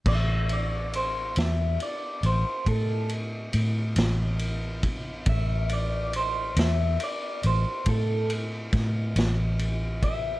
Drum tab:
CC |x-----------|------------|
RD |-xxxxxxxxxxx|xxxxxxxxxxxx|
SD |---o-----o--|---o----oo--|
BD |o-----o----o|o-----o-o--o|